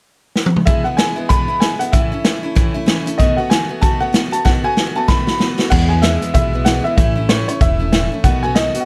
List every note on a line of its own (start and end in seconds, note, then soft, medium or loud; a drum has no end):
0.36 snare medium
0.46 high tom medium
0.56 mid tom medium
0.65 0.86 E2 medium
0.65 0.86 B2 medium
0.65 0.86 E3 medium
0.65 0.85 G#3 medium
0.65 0.85 B3 medium
0.65 0.84 E4 medium
0.65 0.84 E5 medium
0.65 kick loud
0.65 closed hi-hat medium
0.84 0.96 E3 soft
0.84 0.97 G#3 soft
0.84 0.97 B3 soft
0.84 0.98 E4 medium
0.84 0.97 F#5 medium
0.97 1.17 E3 medium
0.97 1.16 G#3 medium
0.97 1.16 B3 medium
0.97 1.15 E4 medium
0.97 1.30 G#5 medium
0.97 snare loud
0.97 closed hi-hat medium
1.16 1.29 E3 soft
1.16 1.29 G#3 soft
1.16 1.29 B3 medium
1.16 1.29 E4 medium
1.29 1.49 E2 medium
1.29 1.49 B2 medium
1.29 1.49 E3 medium
1.29 1.49 G#3 medium
1.29 1.48 B3 medium
1.29 1.47 E4 medium
1.29 1.62 B5 loud
1.29 kick loud
1.29 closed hi-hat medium
1.48 1.60 E3 soft
1.48 1.61 G#3 soft
1.48 1.62 B3 medium
1.48 1.61 E4 medium
1.60 1.80 E3 medium
1.60 1.80 G#3 medium
1.60 1.80 B3 medium
1.60 1.79 E4 medium
1.60 1.79 G#5 medium
1.60 snare loud
1.60 closed hi-hat medium
1.79 1.92 E3 soft
1.79 1.93 G#3 soft
1.79 1.93 B3 soft
1.79 1.93 E4 medium
1.79 1.93 F#5 medium
1.79 closed hi-hat medium
1.92 2.12 A2 medium
1.92 2.12 E3 medium
1.92 2.12 A3 medium
1.92 2.12 C#4 medium
1.92 2.11 E4 medium
1.92 2.39 E5 medium
1.92 kick loud
1.92 closed hi-hat medium
2.12 2.24 A3 soft
2.12 2.25 C#4 soft
2.12 2.25 E4 medium
2.24 2.43 E3 medium
2.24 2.44 A3 medium
2.24 2.43 C#4 medium
2.24 2.42 E4 medium
2.24 snare loud
2.24 closed hi-hat medium
2.43 2.55 A3 soft
2.43 2.55 C#4 soft
2.43 2.56 E4 medium
2.55 2.75 A2 medium
2.55 2.75 E3 medium
2.55 2.75 A3 medium
2.55 2.74 C#4 medium
2.55 2.73 E4 medium
2.55 kick loud
2.55 closed hi-hat medium
2.74 2.85 A3 soft
2.74 2.86 C#4 medium
2.74 2.87 E4 medium
2.86 3.06 E3 medium
2.86 3.06 A3 medium
2.86 3.06 C#4 medium
2.86 3.05 E4 medium
2.86 snare loud
2.86 closed hi-hat medium
3.06 3.18 A3 soft
3.06 3.19 C#4 medium
3.06 3.19 E4 medium
3.06 closed hi-hat medium
3.18 3.38 B2 medium
3.18 3.38 D#3 medium
3.18 3.38 A3 medium
3.18 3.38 B3 medium
3.18 3.37 F#4 medium
3.18 3.36 D#5 medium
3.18 kick medium
3.18 closed hi-hat medium
3.37 3.50 A3 soft
3.37 3.50 B3 soft
3.37 3.51 F#4 medium
3.37 3.50 F#5 medium
3.50 3.69 D#3 medium
3.50 3.70 A3 medium
3.50 3.69 B3 medium
3.50 3.68 F#4 medium
3.50 3.83 G#5 medium
3.50 snare loud
3.50 closed hi-hat medium
3.69 3.81 A3 soft
3.69 3.81 B3 medium
3.69 3.82 F#4 medium
3.81 4.01 B2 medium
3.81 4.01 D#3 medium
3.81 4.01 A3 medium
3.81 4.00 B3 medium
3.81 3.99 F#4 medium
3.81 4.01 A5 loud
3.81 kick loud
3.81 closed hi-hat medium
4.00 4.12 A3 soft
4.00 4.13 B3 medium
4.00 4.13 F#4 medium
4.00 4.33 F#5 loud
4.13 4.32 D#3 medium
4.13 4.32 A3 medium
4.13 4.31 B3 medium
4.13 4.30 F#4 medium
4.13 snare loud
4.13 closed hi-hat medium
4.31 4.44 A3 soft
4.31 4.45 B3 soft
4.31 4.45 F#4 medium
4.31 4.44 A5 loud
4.31 closed hi-hat medium
4.45 4.64 B2 medium
4.45 4.64 D#3 medium
4.45 4.64 A3 medium
4.45 4.63 B3 medium
4.45 4.63 F#4 medium
4.45 4.50 F#5 medium
4.45 kick medium
4.45 snare medium
4.64 4.76 A3 soft
4.64 4.77 B3 soft
4.64 4.77 F#4 medium
4.64 4.97 G#5 loud
4.77 4.96 D#3 medium
4.77 4.96 A3 medium
4.77 4.95 B3 medium
4.77 4.94 F#4 medium
4.77 snare medium
4.95 5.08 A3 soft
4.95 5.08 B3 soft
4.95 5.08 F#4 medium
4.95 5.09 A5 medium
5.08 5.27 B2 medium
5.08 5.27 D#3 medium
5.08 5.27 A3 medium
5.08 5.27 B3 medium
5.08 5.26 F#4 medium
5.08 5.55 B5 loud
5.08 kick loud
5.08 snare medium
5.27 5.39 A3 soft
5.27 5.40 B3 soft
5.27 5.40 F#4 medium
5.27 snare medium
5.39 5.58 D#3 medium
5.39 5.59 A3 medium
5.39 5.58 B3 medium
5.39 5.57 F#4 medium
5.39 snare medium
5.58 5.71 A3 soft
5.58 5.70 B3 medium
5.58 5.71 F#4 medium
5.58 snare medium
5.70 5.90 E2 medium
5.70 6.16 E2 medium
5.70 5.90 B2 medium
5.70 5.90 E3 medium
5.70 5.90 G#3 medium
5.70 5.89 B3 medium
5.70 5.88 E4 medium
5.70 5.90 F#5 loud
5.70 kick loud
5.70 crash medium
5.89 6.01 E3 soft
5.89 6.02 G#3 medium
5.89 6.02 B3 medium
5.89 6.03 E4 medium
5.89 6.01 G#5 medium
6.02 6.21 E2 medium
6.02 6.22 B2 medium
6.02 6.22 E3 medium
6.02 6.21 G#3 medium
6.02 6.21 B3 medium
6.02 6.20 E4 medium
6.02 6.32 E5 medium
6.02 snare loud
6.02 closed hi-hat medium
6.21 6.33 E3 soft
6.21 6.34 G#3 soft
6.21 6.35 B3 soft
6.21 6.34 E4 medium
6.21 closed hi-hat medium
6.34 6.79 B1 medium
6.34 6.53 E3 medium
6.34 6.54 G#3 medium
6.34 6.53 B3 medium
6.34 6.52 E4 medium
6.34 6.63 E5 loud
6.34 kick loud
6.34 closed hi-hat medium
6.53 6.65 E3 soft
6.53 6.66 G#3 soft
6.53 6.66 B3 medium
6.53 6.66 E4 medium
6.65 6.85 E2 medium
6.65 6.85 B2 medium
6.65 6.85 E3 medium
6.65 6.85 G#3 medium
6.65 6.85 B3 medium
6.65 6.84 E4 medium
6.65 6.85 F#5 loud
6.65 snare loud
6.65 closed hi-hat medium
6.84 6.97 E3 soft
6.84 6.98 G#3 soft
6.84 6.98 B3 medium
6.84 6.98 E4 soft
6.84 6.95 E5 medium
6.97 7.42 A1 medium
6.97 7.16 A2 medium
6.97 7.17 E3 medium
6.97 7.17 A3 medium
6.97 7.16 C#4 medium
6.97 7.14 E4 medium
6.97 7.30 E5 medium
6.97 kick loud
6.97 closed hi-hat medium
7.16 7.29 A3 soft
7.16 7.29 C#4 soft
7.16 7.29 E4 medium
7.29 7.48 A2 medium
7.29 7.48 E3 medium
7.29 7.48 A3 medium
7.29 7.47 C#4 medium
7.29 7.47 E4 medium
7.29 7.47 C#5 medium
7.29 snare loud
7.29 closed hi-hat medium
7.48 7.60 A3 soft
7.48 7.61 C#4 soft
7.48 7.61 E4 medium
7.48 7.61 C#5 medium
7.48 closed hi-hat medium
7.61 8.05 E1 medium
7.61 7.80 E3 medium
7.61 7.80 A3 medium
7.61 7.79 C#4 medium
7.61 7.78 E4 medium
7.61 8.08 E5 loud
7.61 kick loud
7.61 closed hi-hat medium
7.79 7.92 A3 soft
7.79 7.92 C#4 soft
7.79 7.92 E4 medium
7.92 8.11 A2 medium
7.92 8.12 E3 medium
7.92 8.12 A3 medium
7.92 8.12 C#4 medium
7.92 8.11 E4 medium
7.92 snare loud
7.92 closed hi-hat medium
8.12 8.24 A3 soft
8.12 8.25 C#4 medium
8.12 8.24 E4 medium
8.24 8.68 B1 medium
8.24 8.43 B2 medium
8.24 8.43 D#3 medium
8.24 8.43 A3 medium
8.24 8.43 B3 medium
8.24 8.42 F#4 medium
8.24 8.41 F#5 medium
8.24 kick medium
8.24 closed hi-hat medium
8.43 8.55 A3 soft
8.43 8.56 B3 medium
8.43 8.56 F#4 medium
8.43 8.56 G#5 medium
8.55 8.74 B2 medium
8.55 8.75 D#3 medium
8.55 8.75 A3 medium
8.55 8.74 B3 medium
8.55 8.73 F#4 medium
8.55 8.79 D#5 medium
8.55 snare loud
8.55 closed hi-hat medium
8.74 8.85 A3 soft
8.74 8.85 B3 medium
8.74 8.85 F#4 medium
8.74 closed hi-hat medium
8.80 8.85 F#5 medium